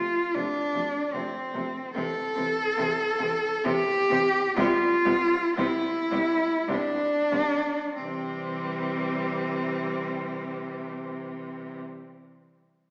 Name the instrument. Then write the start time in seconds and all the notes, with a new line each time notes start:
cello
Already playing: F4
0.35 C3 F3 A3 D4
0.74 C3 F3 A3
1.14 C3 F3 A3 C4
1.54 C3 F3 A3
1.95 C3 E3 C4 A4
2.35 C3 E3 C4
2.77 C3 E3 C4
3.18 C3 E3 C4
3.63 C3 E3 C4 G4
4.09 C3 E3 C4
4.56 C3 G3 B3 F4
5.05 C3 G3 B3
5.56 C3 G3 B3 E4
6.11 C3 G3 B3
6.68 C3 G3 B3 D4
7.32 C3 G3 B3
7.95 C3 E3 G3 C4